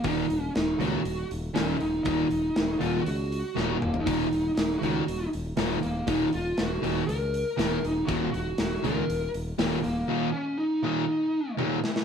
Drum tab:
HH |o-o-o-o-o-o-o-o-|o-o-o-o-o-o-----|o-o-o-o-o-o-o-o-|o-o-o-o-o-o-o-o-|
SD |----o-------o---|----o-------o---|----o-------o---|----o-------o---|
T1 |----------------|----------------|----------------|----------------|
T2 |----------------|--------------o-|----------------|----------------|
FT |----------------|---------------o|----------------|----------------|
BD |o---------------|o---------------|o---------------|o---------------|

HH |o-o-o-o-o-o-o-o-|----------------|
SD |----o-------o---|--------------oo|
T1 |----------------|------------o---|
T2 |----------------|----------------|
FT |----------------|----------------|
BD |o---------------|----------------|